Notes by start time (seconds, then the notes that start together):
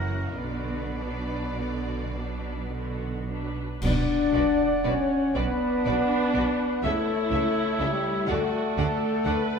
Already playing: F#1 F#2 E3 C#4 E4 F#4 A#4 F#5
0.37 B1 B2 D3 B3 D4 F#4 B4 D5
0.99 F#3 D4 B4
1.58 D3 B3 F#4
2.16 F#3 D4 B4
2.72 D3 B3 F#4
3.29 F#3 D4 B4
3.82 B1 B2 D4 F#4 B4 D5 F#5, concert bass drum, crash
4.33 B1 B2 F#4 B4 D5
4.84 B1 B2 C#4 F#4 B4 C#5 D5
5.35 B1 B2 B3 D4 F#4 B4 D5 F#5
5.86 B1 B2 F#4 B4 D5
6.34 B1 B2 F#4 B4 D5
6.82 C#2 C#3 A3 E4 A4 C#5 E5
7.31 C#2 C#3 A4 E5
7.79 C#2 C#3 G3 G4 A4 E5
8.27 D2 D3 A3 F#4 A4 D5 F#5
8.31 A4
8.77 D2 D3 A4 D5 F#5
9.24 D2 D3 A4 B4 D5 F#5